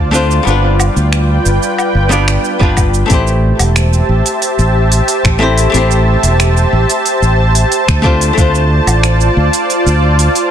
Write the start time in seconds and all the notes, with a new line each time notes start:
Already playing: D2 F4 C5 D5 A5
0.11 A3 C4 D4 F4 C5, cabasa
0.31 cabasa
0.43 G1 G3 B3 D4 B4 G5
0.47 F4 B4, cabasa
0.80 cabasa, low woodblock
0.96 D2, cabasa
1.13 finger snap, cabasa
1.46 G1, cabasa
1.63 cabasa
1.78 cabasa, low woodblock
1.95 G1
2.09 G3 B3 D4 F4 D5, cabasa
2.28 finger snap, cabasa
2.44 cabasa
2.59 G1 G3 B3 D4 F4 B4, kick
2.77 kick, cabasa, low woodblock
2.94 cabasa
3.06 A3 C4 E4, open hi-hat
3.10 A1 G4 C5 E5 A5, kick, cabasa
3.27 cabasa
3.59 E1, open hi-hat, cabasa, low woodblock
3.76 finger snap, open hi-hat, cabasa
3.93 cabasa
4.09 A1
4.26 open hi-hat, cabasa
4.42 open hi-hat, cabasa
4.59 A1, cabasa
4.92 open hi-hat, cabasa
5.08 open hi-hat, cabasa
5.25 A1, finger snap, kick, cabasa
5.39 A3 C4 E4 G4 C5
5.58 open hi-hat, cabasa
5.70 A3 C4
5.74 A1 E4 G4 C5, open hi-hat, cabasa
5.91 cabasa
6.23 E1, open hi-hat, cabasa
6.40 finger snap, open hi-hat, cabasa
6.57 cabasa
6.73 A1
6.90 open hi-hat, cabasa
7.06 open hi-hat, cabasa
7.22 A1, cabasa
7.55 open hi-hat, cabasa
7.72 open hi-hat, cabasa
7.88 D2, finger snap, kick, cabasa
8.02 A3 C4 D4 F4 C5 D5, kick
8.21 open hi-hat, cabasa
8.33 A3 C4 D4
8.38 D2 F4 C5, kick, open hi-hat, cabasa
8.55 cabasa
8.87 A1, open hi-hat, cabasa, low woodblock
9.03 finger snap, open hi-hat, cabasa
9.21 cabasa
9.37 D2
9.53 open hi-hat, cabasa
9.70 open hi-hat, cabasa
9.86 D2, cabasa
10.19 open hi-hat, cabasa
10.35 open hi-hat, cabasa